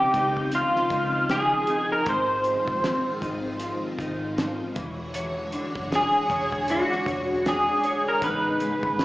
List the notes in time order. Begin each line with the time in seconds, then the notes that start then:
Already playing: C#3 D#3 F3 C4 D#4 G4
0.14 C#2 D#4, kick, closed hi-hat
0.37 kick
0.52 F3 F4, closed hi-hat
0.76 snare
0.90 C#2 D#4, kick, closed hi-hat
1.29 F3 G#4, snare, closed hi-hat
1.67 D#4, closed hi-hat
1.92 A#4
2.06 G#1 G#2 D#3 G#3 D#4 F4 C5, kick, closed hi-hat
2.44 F3, closed hi-hat
2.67 A#1, kick
2.84 C4, snare, closed hi-hat
3.21 G#1 D#4, kick, closed hi-hat
3.60 F3, closed hi-hat
3.98 G#1 D#4, kick, closed hi-hat
4.37 F3, snare, closed hi-hat
4.75 E1 D3 E3 G#3 F#4 C#5, kick, closed hi-hat
5.14 E3 C#5, closed hi-hat
5.52 D4, closed hi-hat
5.75 F#1, kick
5.92 G#4, snare, closed hi-hat
6.30 E1 C#5, kick, closed hi-hat
6.52 kick
6.68 D4 F#4, closed hi-hat
6.92 snare
7.06 E1 C#5, kick, closed hi-hat
7.46 D4 G#4, snare, closed hi-hat
7.84 C#5, closed hi-hat
8.08 A#4
8.22 A1 C#3 B3 D#4 B4, kick, closed hi-hat
8.60 G#3, closed hi-hat
8.83 G#1, kick
8.99 C#4, snare, closed hi-hat